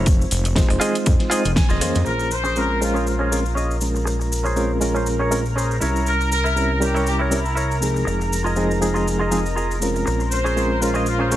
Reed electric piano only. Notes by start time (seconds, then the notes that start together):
Already playing: G#3 C4 D#4 F4 C5
0.56 G#3 C4 D#4 F4 C5
0.80 G#3 C4 D#4 F4 C5
1.31 G#3 C4 D#4 F4 C5
1.81 A#3 C#4 F4 G#4 C5
2.56 G#3 C4 C#4 F4 A#4
2.81 G#3 C#4 F4 A#4 C5
3.32 G#3 C4 C#4 F4 A#4
3.81 G#3 C#4 F4 A#4
4.56 G#3 C4 C#4 F4 A#4
4.81 G#3 C#4 F4 A#4
5.31 G#3 C4 C#4 F4 A#4
5.80 G3 C#4 E4 A#4
6.56 G3 C4 C#4 E4 A#4
6.80 G3 C#4 E4 A#4
7.30 G3 C4 C#4 E4 A#4
7.81 F3 G#3 C4 D#4 G#4
8.56 F3 G#3 C4 D#4 G#4
8.81 F3 G#3 C4 D#4 G#4
9.31 F3 G#3 C4 D#4 G#4
9.81 G#3 C4 C#4 F4 A#4
10.56 G#3 C4 C#4 F4 A#4
10.81 G#3 C#4 F4 A#4 C5
11.31 G#3 C4 C#4 F4 A#4